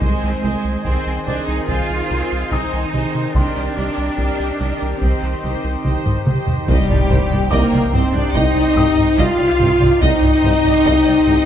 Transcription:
Already playing: C5 C6
0.01 C2 D#3 G#3 C4 G#4 C5 D#5 G#5, taiko
0.23 C2
0.43 C2 C5 D#5 G#5
0.65 C2
0.84 C2 C4 C5 D#5 G#5, taiko
1.07 C2
1.26 C2 D4 C5 D#5 G#5
1.47 C2 D#4
1.67 C2 F4 C5 D#5 G#5, taiko
1.90 C2
2.09 C2 C5 D#5 G#5
2.32 C2
2.50 C2 D#4 C5 D#5 G#5 D#6, taiko
2.73 C2
2.92 C2 C3 C5 D#5 G#5
3.15 C3
3.34 C2 D4 G4 A#4 D#5 G5 C6, taiko
3.56 C2
3.75 C2 G4 A#4 D#5 G5
3.98 C2
4.17 C2 G4 A#4 D#5 G5, taiko
4.40 C2
4.59 C2 G4 A#4 D#5 G5
4.82 C2
5.00 C2 D#3 C4 D#4 G4 C5 D#5 G5, taiko
5.23 C2
5.42 C2 G4 C5 D#5 G5
5.64 C2
5.83 C2 G4 C5 D#5 G5, taiko mid
6.06 C2, taiko low-mid
6.26 C2 C3 G4 C5 D#5 G5, taiko mid
6.47 C3, taiko low
6.67 C2 C3 G3 D#4 G4 C5 D#5 G5, taiko, impact
6.88 C2 D5, taiko low-mid
7.10 C2 C5, taiko low-mid
7.31 C2 D5, taiko low-mid
7.51 C2 A#3 A#4 D#5 D6, taiko
7.72 C2 D5
7.92 C2 C4 C5, taiko low-mid
8.13 C2 D4 D5, taiko low-mid
8.34 C2 D#4 D#5, taiko
8.54 C2 D5
8.76 C2 C5 D#6, taiko low-mid
8.96 C2, taiko low-mid
9.17 C2 F4 D#5 F5, taiko
9.38 C2 D5
9.59 C2 C3 C5, taiko low-mid
9.80 C2 C3 D5, taiko low-mid
10.01 C2 C3 C4 D#4 G4 C5 D#5 G5, taiko
10.22 C2 D5, taiko low-mid
10.43 C2 C5, taiko low-mid
10.64 C2 D5, taiko low-mid
10.85 C2 D#5, taiko
11.06 C2 D5
11.27 C2 C5, taiko low-mid

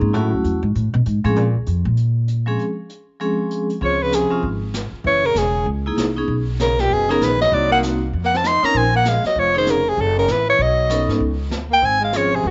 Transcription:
Already playing: A#3 C4 C#4 D#4 G#4
0.01 G#2
0.13 A2 F#3 A3 C#4 E4 F#4, closed hi-hat
0.32 C#2
0.44 E2, closed hi-hat
0.63 G#2
0.75 A2, closed hi-hat
0.94 B2
1.06 G#2, closed hi-hat
1.24 A2 F3 G#3 C4 C#4 G#4, closed hi-hat
1.36 A#2, closed hi-hat
1.55 C#2
1.66 F2, closed hi-hat
1.85 A#2
1.97 closed hi-hat
2.28 closed hi-hat
2.46 F3 G#3 C4 C#4 G#4
2.59 closed hi-hat
2.89 closed hi-hat
3.20 F3 G#3 C4 C#4 G#4, closed hi-hat
3.51 closed hi-hat
3.70 closed hi-hat
3.81 C#2 F3 C4 C#4 G#4 C#5, brush sweep, kick
4.00 C#3 B4
4.12 C3 G#4, snare, hi-hat pedal
4.31 F3 C4 C#4 F4, muted upright bass stroke
4.43 G#1, brush sweep, kick
4.74 snare, hi-hat pedal
4.92 muted upright bass stroke
5.04 F#1 E3 C#5, brush sweep, kick
5.24 C#3 A#4
5.35 E1 C#3 G#4, snare, hi-hat pedal
5.66 C#2, brush sweep, kick
5.86 A#3 D#4 E4 G#4
5.96 C2, snare, hi-hat pedal
6.17 B3 C#4 D#4 G#4
6.28 B1, brush sweep, kick
6.60 C#3 A#4, snare, hi-hat pedal
6.79 A#2 G4, snare
6.90 F#1 B2 G#4, brush sweep, kick
7.09 C#3 B3 C#4 D#4 G#4 A#4, snare
7.20 A#1 D#3 B4, snare, hi-hat pedal
7.40 F#3 D#5, snare
7.52 C2 F#3 A#3 C4 D#4 F#4 D5, brush sweep, kick
7.71 A#3 F#5
7.83 snare, hi-hat pedal
8.13 F2, brush sweep, kick
8.24 A#3 F#5, snare
8.34 C4 A5, snare
8.44 D#4 C6, snare, hi-hat pedal
8.62 C4 C#4 D#4 A#4 A#5, muted upright bass stroke, snare
8.74 A#1 C4 G#5, brush sweep, kick
8.95 A#3 F#5
9.05 G#3 F5, snare, hi-hat pedal
9.24 F#3 D#5, muted upright bass stroke, snare
9.36 F1 F3 C#5, brush sweep, kick
9.54 D#3 C4 C#4 D#4 G#4 C5
9.66 C#3 A#4, snare, hi-hat pedal
9.87 C3 G#4
9.97 F#1 C#3 A4, brush sweep, kick
10.18 C#3 A#4
10.27 A1 E3 B4, snare, hi-hat pedal
10.48 E3 C#5
10.59 B1 F#3 D#5, brush sweep, kick
10.90 B3 C#4 D#4 A4, snare, hi-hat pedal
11.08 G#2, snare
11.20 C#2, brush sweep, kick
11.50 D2, snare, hi-hat pedal
11.70 A#3 G5
11.82 G#1 C4 G#5, brush sweep, kick
12.00 G#3
12.04 F5
12.13 F3 C4 C#4 G#4 C#5, snare, hi-hat pedal
12.32 C3 G#4
12.43 F1 B2, brush sweep, kick

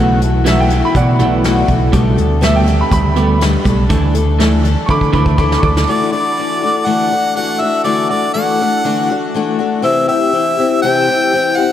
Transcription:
Already playing: B1 B2 E3 F#3 A3
0.00 E4 F#4
0.21 B2 E3 A3 E4 F#4, closed hi-hat
0.44 B2 E3 F#3 A3 E4 F#4 E5, snare, closed hi-hat
0.60 G5
0.70 B2 E3 A3 E4 F#4, closed hi-hat
0.85 B5
0.95 B2 E3 F#3 A3 E4 F#4 D5 F#5, kick, closed hi-hat
1.19 B1 B2 E3 A3 E4 F#4, closed hi-hat
1.44 B2 F#3 A3 E4 F#4, snare, closed hi-hat
1.68 B1 B2 E3 A3 E4 F#4, kick, closed hi-hat
1.92 B1 B2 G3 A3 D4 A4, kick, closed hi-hat
2.18 D2 B2 G3 A3 D4 A4, closed hi-hat
2.41 B2 G3 A3 D4 A4 E5, snare, closed hi-hat
2.56 G5
2.67 B2 G3 A3 D4 A4, closed hi-hat
2.81 B5
2.91 D2 B2 G3 A3 D4 A4 B5, kick, closed hi-hat
3.16 B2 G3 A3 D4 A4, closed hi-hat
3.41 B2 G3 A3 D4 A4, snare, closed hi-hat
3.65 B1 B2 G3 D4 A4, kick, closed hi-hat
3.70 A3
3.89 D2 D3 E3 A3 D4 A4, kick, closed hi-hat
4.14 D3 E3 A3 D4 A4, closed hi-hat
4.39 D3 E3 A3 D4 A4, snare, closed hi-hat
4.63 D3 E3 A3 D4 A4, closed hi-hat
4.86 D3 E3 A3 C#6, kick
4.90 D4 A4 B5 D6
5.01 kick
5.13 D2 D3 E3 A3 D4 A4 B5 D6, kick
5.26 kick
5.38 D3 E3 A3 D4 A4 B5 D6, kick
5.52 snare
5.59 D3 A4 C#6
5.63 D2 E3 A3 D4 D6, kick
5.77 snare
5.87 D3 E3 A3 D4 F#4 D5
6.11 A3 D4 F#4 D5
6.37 E3 A3 D4 F#4
6.62 A3 D4 F#4
6.86 D3 E3 A3 D4 F#4 F#5
7.11 A3 D4 F#4
7.35 E3 A3 D4 F#4 F#5
7.60 A3 D4 F#4 E5
7.84 D3 E3 A3 D4 F#4 D5
8.09 A3 D4 F#4 D5
8.34 E3 A3 D4 F#4 F#5
8.60 A3 D4 F#4
8.84 D3 E3 A3 D4 F#4
9.10 A3 D4 F#4
9.34 E3 A3 D4 F#4
9.59 A3 D4 F#4
9.82 C3 E3 C4 E4 G4 E5
10.08 C4 E4 G4 E5
10.32 E3 C4 E4 G4
10.57 C4 E4 G4
10.82 C3 E3 C4 E4 G4 G5
11.08 C4 E4 G4
11.33 E3 C4 E4 G4
11.56 C4 E4 G4 F#5

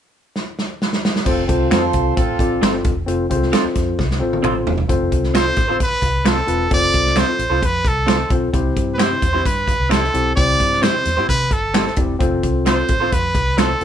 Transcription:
0.36 snare
0.59 snare
0.82 snare
0.93 snare
1.05 snare
1.16 snare
1.24 F1 C4 F4 A4 C5, kick, crash
1.47 C2 C4 F4 A4 C5, kick, closed hi-hat
1.70 F2 C4 F4 A4 C5, finger snap, snare, closed hi-hat
1.93 C2, kick, closed hi-hat
2.16 A1 C4 F4 A4, kick, closed hi-hat
2.39 A1 C4 F4 A4 D5, kick, closed hi-hat
2.62 G1 C4 F4 A4 C5, finger snap, snare, closed hi-hat
2.84 E1, kick, closed hi-hat
3.06 F1 C4 F4 A4 C5, closed hi-hat
3.30 C2 C4 F4 G#4 C5, kick, closed hi-hat
3.36 A4
3.43 snare
3.52 C4 F4 A4 C5, finger snap, snare, closed hi-hat
3.65 muted fingered electric bass stroke
3.75 F2, kick, snare, closed hi-hat
3.99 C2, kick, snare
4.11 snare
4.20 A1 C4 F4 A4 C5
4.33 high tom
4.43 A1 C4 F4 A4 C5, finger snap, mid tom
4.67 E1, floor tom
4.78 floor tom
4.89 F1 C4 F4 A4 C5, kick, closed hi-hat
5.12 C2, kick, closed hi-hat
5.24 snare
5.34 C4 F4 A4 C5, finger snap, snare, closed hi-hat
5.56 A1, kick, snare, closed hi-hat
5.68 C4 F4 A4 C5
5.80 B4, kick, closed hi-hat
5.91 muted fingered electric bass stroke
6.02 C2, kick, closed hi-hat
6.25 C4 F4 A4 C5, finger snap, snare, closed hi-hat
6.47 E1 C4 F4 A4 B4, closed hi-hat
6.71 F1 C4 F4 A4 C5 D5, kick, closed hi-hat
6.94 C2, kick, closed hi-hat
7.06 snare
7.16 C4 F4 A4 C5, finger snap, snare, closed hi-hat
7.39 A1, closed hi-hat
7.50 C2 C4 F4 A4 C5
7.63 F2 B4, kick, closed hi-hat
7.85 C2 A4, kick, closed hi-hat
8.06 C4 F4 A4 C5, finger snap, snare, closed hi-hat
8.30 B1 C4 F4 A4 C5, kick, closed hi-hat
8.53 C2 C3 C4 E4 G4 C5, kick, closed hi-hat
8.76 G2, kick, closed hi-hat
8.94 B4
8.98 C4 E4 G4 C5, finger snap, snare, closed hi-hat
9.22 E2, kick, closed hi-hat
9.33 C4 E4 G4 C5
9.45 G2 B4, kick, closed hi-hat
9.68 kick, closed hi-hat
9.80 C2
9.89 C4 E4 G4 A4 C5, finger snap, snare, closed hi-hat
10.04 snare
10.13 B1 C4 E4 G4 C5, closed hi-hat
10.36 C2 C3 C4 E4 G4 C5 D5, kick, closed hi-hat
10.60 G2, kick, closed hi-hat
10.73 snare
10.82 C4 E4 G4 C5, finger snap, snare, closed hi-hat
11.05 E2, snare, closed hi-hat
11.17 G2 C4 E4 G4 C5
11.29 C3 B4, kick, closed hi-hat
11.51 G1 A4, kick, closed hi-hat
11.74 C4 E4 G4 C5, finger snap, snare, closed hi-hat
11.87 snare
11.96 E1 C4 E4 G4 D5, kick, closed hi-hat
12.19 F1 C4 F4 A4 C5, kick, closed hi-hat
12.43 C2, kick, closed hi-hat
12.66 C4 F4 A4 C5, finger snap, snare, closed hi-hat
12.88 A1, kick, closed hi-hat
13.00 C4 F4 A4 C5
13.12 F2 B4, kick, closed hi-hat
13.35 C2, kick, closed hi-hat
13.57 C4 F4 A4 C5, finger snap, snare, closed hi-hat
13.81 E1 C4, open hi-hat

